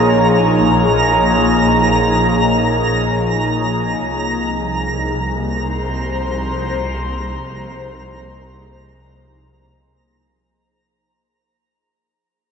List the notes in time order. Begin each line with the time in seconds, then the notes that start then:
Already playing: A#1 F3 A#3 D#4 F4 G#4 C#5 A#5
4.00 C2
5.39 C5